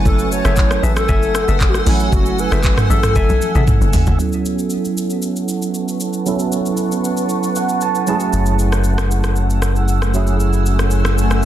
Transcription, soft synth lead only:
0.06 0.30 A4 loud
0.32 0.85 C#5 loud
0.83 0.97 B4 loud
0.97 1.53 A4 medium
1.51 1.61 B4 medium
1.60 1.70 A4 medium
1.69 1.79 F#4 medium
1.78 1.87 A4 medium
2.13 2.41 F#4 loud
2.39 2.90 B4 loud
2.91 3.64 A4 loud

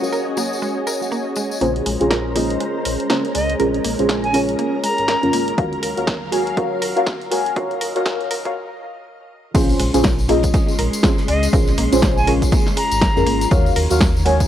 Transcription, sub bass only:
1.61 1.81 A#1 medium
1.86 1.97 A#1 medium
2.01 2.57 A#1 medium
2.85 2.96 A#1 loud
3.35 3.55 C#2 medium
3.60 3.80 A#1 loud
3.84 3.96 A#1 medium
3.99 4.55 A#1 medium
4.98 5.16 G#1 loud
5.23 5.31 F2 medium
5.33 5.53 G#1 medium
5.58 5.78 D#2 loud
5.83 5.94 D#2 medium
5.97 6.53 D#2 loud
6.82 6.93 D#2 loud
7.32 7.52 F#2 medium
7.56 7.76 D#2 loud
7.81 7.92 D#2 medium
7.96 8.52 D#2 loud
9.55 9.75 A#1 loud
9.79 9.91 A#1 medium
9.94 10.50 A#1 loud
10.79 10.90 A#1 loud
11.28 11.48 C#2 medium
11.53 11.73 A#1 loud
11.78 11.89 A#1 medium
11.92 12.48 A#1 loud
12.92 13.10 G#1 loud
13.16 13.24 F2 medium
13.27 13.47 G#1 medium
13.51 13.71 D#2 loud
13.76 13.87 D#2 medium
13.91 14.47 D#2 loud

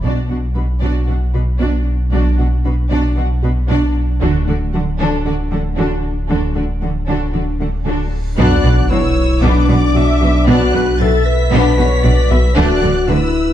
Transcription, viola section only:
0.05 0.29 D4 soft
0.05 0.29 F#4 soft
0.30 0.39 D4 soft
0.30 0.38 F#4 soft
0.57 0.65 D4 soft
0.57 0.65 F#4 soft
0.82 1.07 D4 soft
0.82 1.07 F#4 soft
1.08 1.16 D4 soft
1.08 1.16 F#4 soft
1.34 1.42 D4 soft
1.34 1.42 F#4 soft
1.60 1.85 D4 medium
1.60 1.85 F#4 medium
2.12 2.37 D4 medium
2.12 2.37 F#4 medium
2.38 2.46 D4 soft
2.38 2.47 F#4 soft
2.65 2.73 D4 soft
2.65 2.73 F#4 soft
2.90 3.15 D4 medium
2.90 3.15 F#4 soft
3.17 3.25 D4 soft
3.17 3.25 F#4 soft
3.43 3.51 D4 soft
3.43 3.51 F#4 soft
3.69 3.93 D4 medium
3.69 3.94 F#4 medium
4.22 4.46 D4 medium
4.22 4.46 F#4 medium
4.48 4.56 D4 soft
4.48 4.56 F#4 soft
4.73 4.81 D4 soft
4.73 4.82 F#4 soft
4.99 5.24 D4 medium
4.99 5.24 F#4 soft
5.25 5.33 D4 soft
5.25 5.33 F#4 soft
5.52 5.60 D4 soft
5.52 5.60 F#4 soft
5.77 6.02 D4 medium
5.77 6.02 F#4 medium
6.30 6.54 D4 medium
6.30 6.54 F#4 soft
6.56 6.64 D4 soft
6.56 6.64 F#4 soft
6.82 6.90 D4 soft
6.82 6.90 F#4 soft
7.09 7.33 D4 soft
7.09 7.33 F#4 soft
7.35 7.43 D4 soft
7.35 7.43 F#4 soft
7.61 7.69 D4 soft
7.61 7.69 F#4 soft
7.87 8.11 D4 medium
7.87 8.11 F#4 soft
8.39 8.87 D5 medium
8.91 9.42 C#5 medium
9.44 9.70 B4 medium
9.70 9.96 D5 medium
9.96 10.48 E5 loud
10.48 10.73 D5 medium
10.73 11.00 B4 medium
11.00 11.52 E5 medium
11.52 11.78 D5 medium
11.78 12.04 C#5 medium
12.04 12.30 D5 medium
12.30 12.56 E5 medium
12.57 13.08 D5 medium
13.09 13.53 B4 medium

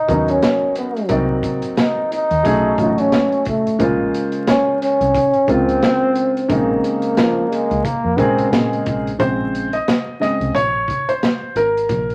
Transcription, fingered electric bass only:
0.08 0.39 D#2 medium
1.10 1.40 C2 loud
2.31 2.43 D#2 medium
2.45 2.75 B1 loud
2.78 3.08 A1 medium
3.80 4.10 A#1 medium
5.00 5.13 C2 medium
5.48 5.78 C#2 loud
6.49 6.79 A#1 loud
7.71 7.83 C#2 medium
8.04 8.17 F2 medium
8.18 8.48 A#2 loud
8.52 8.82 A#2 loud
8.87 9.16 A#1 medium
9.20 9.79 A#1 loud
10.40 10.53 C2 medium
10.55 10.84 A#1 medium
11.55 11.85 G#1 medium
11.89 12.15 A#1 loud

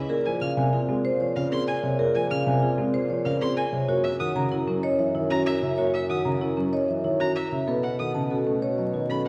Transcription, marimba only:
0.10 0.30 G#4 medium
0.26 0.46 C5 medium
0.42 0.62 G#4 medium
0.73 0.93 F4 medium
0.89 1.09 C4 medium
1.05 1.25 C5 medium
1.36 1.57 F4 medium
1.52 1.72 G#4 medium
1.68 1.88 A#4 medium
1.99 2.20 G#4 medium
2.15 2.35 C5 medium
2.31 2.51 G#4 medium
2.62 2.83 F4 medium
2.78 2.99 C4 medium
2.94 3.14 C5 medium
3.25 3.46 F4 medium
3.41 3.62 G#4 medium
3.57 3.78 A#4 medium
3.88 4.09 F#4 medium
4.20 4.41 F#4 medium
4.52 4.72 E4 medium
4.68 4.88 C#4 medium
4.83 5.04 C#5 loud
5.15 5.35 E4 medium
5.31 5.51 F#4 medium
5.47 5.67 A#4 medium
5.78 5.99 F#4 medium
6.10 6.30 F#4 medium
6.41 6.62 E4 medium
6.57 6.78 C#4 medium
6.73 6.93 C#5 medium
7.04 7.25 E4 medium
7.20 7.41 F#4 medium
7.36 7.56 A#4 medium
7.68 7.88 A4 medium
7.99 8.20 A4 medium
8.31 8.51 F#4 medium
8.47 8.67 C#4 medium
8.62 8.83 C#5 medium
8.94 9.14 F#4 medium
9.10 9.28 A4 medium

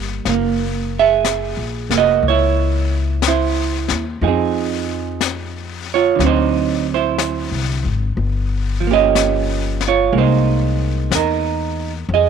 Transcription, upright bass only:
0.00 0.21 G1 medium
0.25 1.53 F#1 medium
1.57 1.88 A#1 soft
1.89 2.20 F1 medium
2.23 3.86 C#2 medium
3.90 4.19 D#2 medium
4.21 6.15 F2 medium
6.19 7.46 D2 medium
7.51 7.81 C2 soft
7.84 8.14 G#1 medium
8.17 10.09 G1 medium
10.13 11.07 C2 medium
11.11 12.05 E2 medium
12.09 12.29 F2 medium

